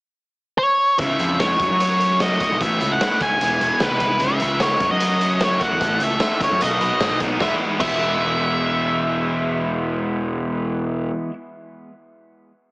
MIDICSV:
0, 0, Header, 1, 6, 480
1, 0, Start_track
1, 0, Key_signature, 4, "major"
1, 0, Tempo, 402685
1, 1188, Time_signature, 4, 2, 24, 8
1, 6466, Tempo, 398142
1, 15254, End_track
2, 0, Start_track
2, 0, Title_t, "Lead electric guitar"
2, 0, Program_c, 0, 29
2, 694, Note_on_c, 0, 73, 92
2, 1179, Note_off_c, 0, 73, 0
2, 1184, Note_on_c, 0, 76, 81
2, 1670, Note_off_c, 0, 76, 0
2, 1675, Note_on_c, 0, 73, 66
2, 2158, Note_off_c, 0, 73, 0
2, 2173, Note_on_c, 0, 73, 86
2, 2633, Note_off_c, 0, 73, 0
2, 2638, Note_on_c, 0, 75, 87
2, 3119, Note_off_c, 0, 75, 0
2, 3123, Note_on_c, 0, 76, 94
2, 3480, Note_on_c, 0, 78, 97
2, 3489, Note_off_c, 0, 76, 0
2, 3812, Note_off_c, 0, 78, 0
2, 3845, Note_on_c, 0, 80, 106
2, 4556, Note_on_c, 0, 71, 95
2, 4580, Note_off_c, 0, 80, 0
2, 5000, Note_off_c, 0, 71, 0
2, 5026, Note_on_c, 0, 76, 100
2, 5473, Note_off_c, 0, 76, 0
2, 5511, Note_on_c, 0, 73, 75
2, 5844, Note_off_c, 0, 73, 0
2, 5858, Note_on_c, 0, 75, 76
2, 6478, Note_off_c, 0, 75, 0
2, 6485, Note_on_c, 0, 73, 80
2, 6705, Note_on_c, 0, 78, 84
2, 6723, Note_off_c, 0, 73, 0
2, 7193, Note_on_c, 0, 76, 93
2, 7202, Note_off_c, 0, 78, 0
2, 7638, Note_off_c, 0, 76, 0
2, 7687, Note_on_c, 0, 73, 85
2, 7902, Note_off_c, 0, 73, 0
2, 7915, Note_on_c, 0, 75, 83
2, 8585, Note_off_c, 0, 75, 0
2, 8867, Note_on_c, 0, 76, 74
2, 9003, Note_off_c, 0, 76, 0
2, 9337, Note_on_c, 0, 76, 66
2, 13306, Note_off_c, 0, 76, 0
2, 15254, End_track
3, 0, Start_track
3, 0, Title_t, "Overdriven electric guitar"
3, 0, Program_c, 1, 29
3, 1203, Note_on_c, 1, 49, 66
3, 1677, Note_on_c, 1, 56, 66
3, 1914, Note_off_c, 1, 56, 0
3, 1917, Note_off_c, 1, 49, 0
3, 1921, Note_on_c, 1, 54, 62
3, 2143, Note_off_c, 1, 54, 0
3, 2158, Note_on_c, 1, 54, 60
3, 2402, Note_on_c, 1, 61, 63
3, 2631, Note_on_c, 1, 57, 66
3, 2880, Note_on_c, 1, 66, 70
3, 3112, Note_off_c, 1, 57, 0
3, 3112, Note_on_c, 1, 45, 72
3, 3116, Note_off_c, 1, 54, 0
3, 3117, Note_off_c, 1, 66, 0
3, 3118, Note_off_c, 1, 61, 0
3, 3589, Note_on_c, 1, 57, 58
3, 3843, Note_on_c, 1, 61, 64
3, 4069, Note_on_c, 1, 52, 66
3, 4071, Note_off_c, 1, 57, 0
3, 4073, Note_off_c, 1, 45, 0
3, 4078, Note_off_c, 1, 61, 0
3, 4312, Note_on_c, 1, 59, 57
3, 4555, Note_on_c, 1, 56, 63
3, 4798, Note_on_c, 1, 64, 66
3, 5027, Note_off_c, 1, 52, 0
3, 5031, Note_off_c, 1, 59, 0
3, 5031, Note_on_c, 1, 49, 75
3, 5033, Note_off_c, 1, 56, 0
3, 5034, Note_off_c, 1, 64, 0
3, 5506, Note_on_c, 1, 56, 70
3, 5731, Note_off_c, 1, 49, 0
3, 5736, Note_on_c, 1, 54, 55
3, 5747, Note_off_c, 1, 56, 0
3, 5950, Note_off_c, 1, 54, 0
3, 5964, Note_on_c, 1, 54, 64
3, 6206, Note_on_c, 1, 61, 65
3, 6444, Note_on_c, 1, 57, 69
3, 6677, Note_on_c, 1, 66, 71
3, 6933, Note_off_c, 1, 66, 0
3, 6934, Note_on_c, 1, 45, 74
3, 6935, Note_off_c, 1, 54, 0
3, 6937, Note_off_c, 1, 57, 0
3, 6937, Note_off_c, 1, 61, 0
3, 7408, Note_on_c, 1, 57, 66
3, 7653, Note_on_c, 1, 61, 54
3, 7889, Note_off_c, 1, 45, 0
3, 7894, Note_on_c, 1, 47, 76
3, 7900, Note_off_c, 1, 57, 0
3, 7902, Note_off_c, 1, 61, 0
3, 8135, Note_on_c, 1, 59, 68
3, 8380, Note_on_c, 1, 54, 77
3, 8616, Note_on_c, 1, 63, 77
3, 8840, Note_on_c, 1, 52, 100
3, 8849, Note_off_c, 1, 54, 0
3, 8854, Note_on_c, 1, 56, 106
3, 8855, Note_off_c, 1, 59, 0
3, 8863, Note_off_c, 1, 47, 0
3, 8864, Note_off_c, 1, 63, 0
3, 8869, Note_on_c, 1, 59, 89
3, 8883, Note_on_c, 1, 64, 110
3, 9313, Note_off_c, 1, 52, 0
3, 9317, Note_on_c, 1, 52, 91
3, 9335, Note_off_c, 1, 56, 0
3, 9340, Note_on_c, 1, 56, 88
3, 9351, Note_off_c, 1, 59, 0
3, 9356, Note_on_c, 1, 59, 88
3, 9364, Note_off_c, 1, 64, 0
3, 9369, Note_on_c, 1, 64, 105
3, 13537, Note_off_c, 1, 52, 0
3, 13559, Note_off_c, 1, 56, 0
3, 13575, Note_off_c, 1, 59, 0
3, 13588, Note_off_c, 1, 64, 0
3, 15254, End_track
4, 0, Start_track
4, 0, Title_t, "Overdriven electric guitar"
4, 0, Program_c, 2, 29
4, 1181, Note_on_c, 2, 49, 67
4, 1186, Note_on_c, 2, 52, 74
4, 1195, Note_on_c, 2, 56, 62
4, 1208, Note_on_c, 2, 64, 67
4, 1209, Note_on_c, 2, 61, 65
4, 1895, Note_off_c, 2, 49, 0
4, 1901, Note_on_c, 2, 42, 63
4, 1909, Note_off_c, 2, 52, 0
4, 1909, Note_on_c, 2, 49, 74
4, 1913, Note_off_c, 2, 56, 0
4, 1918, Note_off_c, 2, 61, 0
4, 1918, Note_on_c, 2, 54, 69
4, 1920, Note_off_c, 2, 64, 0
4, 1922, Note_on_c, 2, 57, 66
4, 1932, Note_on_c, 2, 61, 74
4, 1937, Note_on_c, 2, 66, 75
4, 3099, Note_off_c, 2, 49, 0
4, 3104, Note_on_c, 2, 45, 61
4, 3105, Note_off_c, 2, 57, 0
4, 3107, Note_off_c, 2, 54, 0
4, 3108, Note_off_c, 2, 42, 0
4, 3112, Note_on_c, 2, 52, 70
4, 3116, Note_off_c, 2, 61, 0
4, 3119, Note_on_c, 2, 57, 65
4, 3126, Note_off_c, 2, 66, 0
4, 3131, Note_on_c, 2, 61, 70
4, 3132, Note_on_c, 2, 64, 71
4, 4045, Note_on_c, 2, 40, 65
4, 4054, Note_off_c, 2, 45, 0
4, 4054, Note_off_c, 2, 52, 0
4, 4059, Note_on_c, 2, 47, 64
4, 4068, Note_off_c, 2, 57, 0
4, 4068, Note_on_c, 2, 52, 65
4, 4071, Note_off_c, 2, 64, 0
4, 4072, Note_on_c, 2, 56, 70
4, 4074, Note_off_c, 2, 61, 0
4, 4078, Note_on_c, 2, 59, 69
4, 4086, Note_on_c, 2, 64, 64
4, 5007, Note_off_c, 2, 47, 0
4, 5010, Note_off_c, 2, 52, 0
4, 5012, Note_on_c, 2, 49, 73
4, 5017, Note_off_c, 2, 40, 0
4, 5023, Note_off_c, 2, 56, 0
4, 5024, Note_on_c, 2, 52, 78
4, 5034, Note_off_c, 2, 59, 0
4, 5037, Note_on_c, 2, 56, 80
4, 5038, Note_off_c, 2, 64, 0
4, 5039, Note_on_c, 2, 61, 76
4, 5051, Note_on_c, 2, 64, 76
4, 5722, Note_off_c, 2, 49, 0
4, 5729, Note_on_c, 2, 42, 64
4, 5734, Note_off_c, 2, 52, 0
4, 5736, Note_on_c, 2, 49, 67
4, 5739, Note_on_c, 2, 54, 74
4, 5740, Note_off_c, 2, 61, 0
4, 5750, Note_off_c, 2, 56, 0
4, 5753, Note_off_c, 2, 64, 0
4, 5755, Note_on_c, 2, 57, 60
4, 5755, Note_on_c, 2, 61, 70
4, 5758, Note_on_c, 2, 66, 73
4, 6915, Note_off_c, 2, 49, 0
4, 6920, Note_on_c, 2, 45, 77
4, 6928, Note_off_c, 2, 57, 0
4, 6934, Note_off_c, 2, 54, 0
4, 6934, Note_off_c, 2, 61, 0
4, 6937, Note_off_c, 2, 42, 0
4, 6939, Note_on_c, 2, 52, 66
4, 6942, Note_on_c, 2, 57, 79
4, 6948, Note_on_c, 2, 61, 63
4, 6952, Note_off_c, 2, 66, 0
4, 6961, Note_on_c, 2, 69, 77
4, 7888, Note_off_c, 2, 45, 0
4, 7893, Note_on_c, 2, 47, 63
4, 7895, Note_off_c, 2, 52, 0
4, 7900, Note_on_c, 2, 54, 64
4, 7905, Note_off_c, 2, 57, 0
4, 7909, Note_on_c, 2, 59, 66
4, 7911, Note_off_c, 2, 61, 0
4, 7917, Note_off_c, 2, 69, 0
4, 7919, Note_on_c, 2, 63, 58
4, 7925, Note_on_c, 2, 66, 70
4, 8836, Note_on_c, 2, 40, 97
4, 8843, Note_off_c, 2, 47, 0
4, 8853, Note_off_c, 2, 54, 0
4, 8858, Note_on_c, 2, 47, 95
4, 8858, Note_on_c, 2, 52, 86
4, 8865, Note_off_c, 2, 59, 0
4, 8872, Note_on_c, 2, 56, 99
4, 8875, Note_off_c, 2, 63, 0
4, 8879, Note_off_c, 2, 66, 0
4, 8880, Note_on_c, 2, 59, 100
4, 8889, Note_on_c, 2, 64, 99
4, 9325, Note_off_c, 2, 40, 0
4, 9330, Note_on_c, 2, 40, 90
4, 9337, Note_off_c, 2, 47, 0
4, 9342, Note_on_c, 2, 47, 81
4, 9345, Note_off_c, 2, 52, 0
4, 9350, Note_on_c, 2, 52, 105
4, 9353, Note_off_c, 2, 56, 0
4, 9358, Note_on_c, 2, 56, 93
4, 9367, Note_off_c, 2, 59, 0
4, 9372, Note_on_c, 2, 59, 97
4, 9374, Note_off_c, 2, 64, 0
4, 9378, Note_on_c, 2, 64, 100
4, 13549, Note_off_c, 2, 40, 0
4, 13561, Note_off_c, 2, 47, 0
4, 13570, Note_off_c, 2, 52, 0
4, 13578, Note_off_c, 2, 56, 0
4, 13592, Note_off_c, 2, 59, 0
4, 13598, Note_off_c, 2, 64, 0
4, 15254, End_track
5, 0, Start_track
5, 0, Title_t, "Picked electric bass"
5, 0, Program_c, 3, 34
5, 1174, Note_on_c, 3, 37, 94
5, 1376, Note_off_c, 3, 37, 0
5, 1418, Note_on_c, 3, 41, 95
5, 1816, Note_off_c, 3, 41, 0
5, 1904, Note_on_c, 3, 42, 76
5, 2004, Note_off_c, 3, 42, 0
5, 2026, Note_on_c, 3, 54, 72
5, 2813, Note_off_c, 3, 54, 0
5, 3000, Note_on_c, 3, 35, 90
5, 3095, Note_off_c, 3, 35, 0
5, 3112, Note_on_c, 3, 33, 98
5, 3309, Note_off_c, 3, 33, 0
5, 3353, Note_on_c, 3, 37, 85
5, 3549, Note_off_c, 3, 37, 0
5, 3820, Note_on_c, 3, 37, 72
5, 3923, Note_off_c, 3, 37, 0
5, 3934, Note_on_c, 3, 29, 82
5, 4040, Note_off_c, 3, 29, 0
5, 4062, Note_on_c, 3, 28, 103
5, 4262, Note_off_c, 3, 28, 0
5, 4301, Note_on_c, 3, 28, 85
5, 4404, Note_off_c, 3, 28, 0
5, 4536, Note_on_c, 3, 37, 85
5, 4641, Note_off_c, 3, 37, 0
5, 4649, Note_on_c, 3, 36, 74
5, 5008, Note_off_c, 3, 36, 0
5, 5008, Note_on_c, 3, 37, 95
5, 5213, Note_off_c, 3, 37, 0
5, 5265, Note_on_c, 3, 37, 111
5, 5658, Note_off_c, 3, 37, 0
5, 5719, Note_on_c, 3, 42, 77
5, 5829, Note_off_c, 3, 42, 0
5, 5849, Note_on_c, 3, 54, 78
5, 6638, Note_off_c, 3, 54, 0
5, 6820, Note_on_c, 3, 40, 86
5, 6921, Note_off_c, 3, 40, 0
5, 6928, Note_on_c, 3, 33, 106
5, 7133, Note_off_c, 3, 33, 0
5, 7162, Note_on_c, 3, 37, 96
5, 7369, Note_off_c, 3, 37, 0
5, 7641, Note_on_c, 3, 37, 81
5, 7751, Note_off_c, 3, 37, 0
5, 7777, Note_on_c, 3, 42, 96
5, 7881, Note_off_c, 3, 42, 0
5, 7902, Note_on_c, 3, 35, 101
5, 8102, Note_off_c, 3, 35, 0
5, 8130, Note_on_c, 3, 35, 98
5, 8237, Note_off_c, 3, 35, 0
5, 8366, Note_on_c, 3, 32, 86
5, 8475, Note_off_c, 3, 32, 0
5, 8486, Note_on_c, 3, 35, 70
5, 8791, Note_off_c, 3, 35, 0
5, 8848, Note_on_c, 3, 28, 92
5, 8993, Note_off_c, 3, 28, 0
5, 9328, Note_on_c, 3, 28, 98
5, 13296, Note_off_c, 3, 28, 0
5, 15254, End_track
6, 0, Start_track
6, 0, Title_t, "Drums"
6, 1172, Note_on_c, 9, 42, 66
6, 1179, Note_on_c, 9, 36, 86
6, 1291, Note_off_c, 9, 42, 0
6, 1299, Note_off_c, 9, 36, 0
6, 1423, Note_on_c, 9, 42, 54
6, 1542, Note_off_c, 9, 42, 0
6, 1667, Note_on_c, 9, 42, 78
6, 1669, Note_on_c, 9, 38, 93
6, 1786, Note_off_c, 9, 42, 0
6, 1788, Note_off_c, 9, 38, 0
6, 1791, Note_on_c, 9, 38, 28
6, 1903, Note_on_c, 9, 36, 99
6, 1908, Note_on_c, 9, 42, 60
6, 1910, Note_off_c, 9, 38, 0
6, 2022, Note_off_c, 9, 36, 0
6, 2027, Note_off_c, 9, 42, 0
6, 2149, Note_on_c, 9, 42, 99
6, 2268, Note_off_c, 9, 42, 0
6, 2388, Note_on_c, 9, 42, 54
6, 2507, Note_off_c, 9, 42, 0
6, 2623, Note_on_c, 9, 42, 78
6, 2626, Note_on_c, 9, 38, 82
6, 2743, Note_off_c, 9, 42, 0
6, 2745, Note_off_c, 9, 38, 0
6, 2864, Note_on_c, 9, 42, 58
6, 2866, Note_on_c, 9, 36, 75
6, 2984, Note_off_c, 9, 42, 0
6, 2985, Note_off_c, 9, 36, 0
6, 3107, Note_on_c, 9, 36, 102
6, 3109, Note_on_c, 9, 42, 83
6, 3226, Note_off_c, 9, 36, 0
6, 3229, Note_off_c, 9, 42, 0
6, 3345, Note_on_c, 9, 42, 56
6, 3464, Note_off_c, 9, 42, 0
6, 3586, Note_on_c, 9, 42, 86
6, 3588, Note_on_c, 9, 38, 109
6, 3705, Note_off_c, 9, 42, 0
6, 3707, Note_off_c, 9, 38, 0
6, 3818, Note_on_c, 9, 42, 63
6, 3822, Note_on_c, 9, 36, 74
6, 3938, Note_off_c, 9, 42, 0
6, 3942, Note_off_c, 9, 36, 0
6, 4065, Note_on_c, 9, 42, 94
6, 4184, Note_off_c, 9, 42, 0
6, 4303, Note_on_c, 9, 42, 57
6, 4422, Note_off_c, 9, 42, 0
6, 4531, Note_on_c, 9, 42, 82
6, 4534, Note_on_c, 9, 38, 95
6, 4650, Note_off_c, 9, 42, 0
6, 4653, Note_off_c, 9, 38, 0
6, 4767, Note_on_c, 9, 42, 57
6, 4774, Note_on_c, 9, 36, 73
6, 4886, Note_off_c, 9, 42, 0
6, 4893, Note_off_c, 9, 36, 0
6, 5002, Note_on_c, 9, 42, 69
6, 5011, Note_on_c, 9, 36, 83
6, 5121, Note_off_c, 9, 42, 0
6, 5130, Note_off_c, 9, 36, 0
6, 5241, Note_on_c, 9, 42, 59
6, 5360, Note_off_c, 9, 42, 0
6, 5484, Note_on_c, 9, 42, 82
6, 5486, Note_on_c, 9, 38, 98
6, 5603, Note_off_c, 9, 42, 0
6, 5605, Note_off_c, 9, 38, 0
6, 5725, Note_on_c, 9, 42, 65
6, 5726, Note_on_c, 9, 36, 98
6, 5844, Note_off_c, 9, 42, 0
6, 5845, Note_off_c, 9, 36, 0
6, 5964, Note_on_c, 9, 42, 99
6, 6083, Note_off_c, 9, 42, 0
6, 6209, Note_on_c, 9, 42, 55
6, 6328, Note_off_c, 9, 42, 0
6, 6443, Note_on_c, 9, 42, 93
6, 6445, Note_on_c, 9, 38, 105
6, 6563, Note_off_c, 9, 42, 0
6, 6566, Note_off_c, 9, 38, 0
6, 6687, Note_on_c, 9, 36, 73
6, 6689, Note_on_c, 9, 42, 62
6, 6807, Note_off_c, 9, 36, 0
6, 6810, Note_off_c, 9, 42, 0
6, 6929, Note_on_c, 9, 36, 97
6, 6931, Note_on_c, 9, 42, 83
6, 7049, Note_off_c, 9, 36, 0
6, 7051, Note_off_c, 9, 42, 0
6, 7161, Note_on_c, 9, 42, 67
6, 7281, Note_off_c, 9, 42, 0
6, 7400, Note_on_c, 9, 42, 81
6, 7403, Note_on_c, 9, 38, 100
6, 7521, Note_off_c, 9, 42, 0
6, 7523, Note_off_c, 9, 38, 0
6, 7649, Note_on_c, 9, 36, 88
6, 7651, Note_on_c, 9, 42, 69
6, 7770, Note_off_c, 9, 36, 0
6, 7772, Note_off_c, 9, 42, 0
6, 7893, Note_on_c, 9, 42, 103
6, 8014, Note_off_c, 9, 42, 0
6, 8134, Note_on_c, 9, 42, 56
6, 8255, Note_off_c, 9, 42, 0
6, 8370, Note_on_c, 9, 42, 72
6, 8373, Note_on_c, 9, 38, 99
6, 8491, Note_off_c, 9, 42, 0
6, 8493, Note_off_c, 9, 38, 0
6, 8605, Note_on_c, 9, 42, 58
6, 8611, Note_on_c, 9, 36, 76
6, 8726, Note_off_c, 9, 42, 0
6, 8732, Note_off_c, 9, 36, 0
6, 8853, Note_on_c, 9, 36, 94
6, 8855, Note_on_c, 9, 38, 81
6, 8973, Note_off_c, 9, 36, 0
6, 8976, Note_off_c, 9, 38, 0
6, 9335, Note_on_c, 9, 36, 96
6, 9339, Note_on_c, 9, 49, 85
6, 9456, Note_off_c, 9, 36, 0
6, 9459, Note_off_c, 9, 49, 0
6, 15254, End_track
0, 0, End_of_file